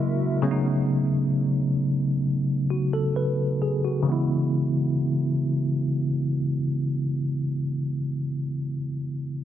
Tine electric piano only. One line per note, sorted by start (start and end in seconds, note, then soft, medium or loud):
0.00 0.32 C#3 medium
0.00 0.32 F#3 medium
0.00 0.32 G#3 medium
0.00 0.33 A#3 medium
0.00 0.33 E4 medium
0.42 2.10 C#3 medium
0.42 2.10 F#3 medium
0.42 2.11 A3 medium
0.42 2.11 B3 medium
0.42 0.50 C#4 medium
0.51 2.15 D#4 medium
2.70 2.92 F#4 medium
2.93 3.15 A4 medium
3.16 3.59 B4 medium
3.62 3.83 G#4 medium
3.84 4.27 F#4 medium
4.03 8.63 C#3 medium
4.03 8.65 E3 medium
4.07 8.67 G#3 medium
4.07 8.70 B3 medium
4.12 8.72 E4 medium